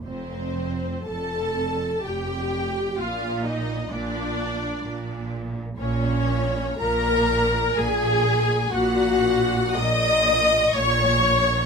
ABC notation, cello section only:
X:1
M:3/4
L:1/8
Q:1/4=62
K:Bb
V:1 name="Cello section" clef=bass
F,,2 F,,2 F,,2 | B,,2 B,,2 B,,2 | [K:Bbm] B,,2 B,,2 B,,2 | B,,2 B,,2 B,,2 |]